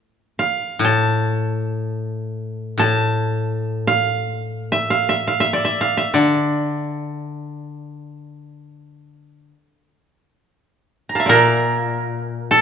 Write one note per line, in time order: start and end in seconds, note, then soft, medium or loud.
0.39 1.83 F5 medium
0.79 2.76 A2 medium
0.85 2.76 A5 medium
2.78 6.00 A2 medium
2.78 4.05 A5 medium
3.87 4.78 F5 medium
4.72 4.96 E5 medium
4.90 5.15 F5 medium
5.09 5.33 E5 medium
5.27 5.46 F5 medium
5.40 5.64 E5 medium
5.53 6.13 D5 medium
5.65 5.87 E5 medium
5.81 6.03 F5 medium
5.97 7.47 E5 medium
6.14 9.51 D3 soft
6.14 9.61 D5 medium
11.09 12.31 A#5 soft
11.15 12.59 F5 soft
11.15 11.35 A5 soft
11.20 12.62 E5 medium
11.26 12.62 A#2 medium
11.26 12.57 A#4 medium
11.26 12.62 D5 medium
12.51 12.62 A4 medium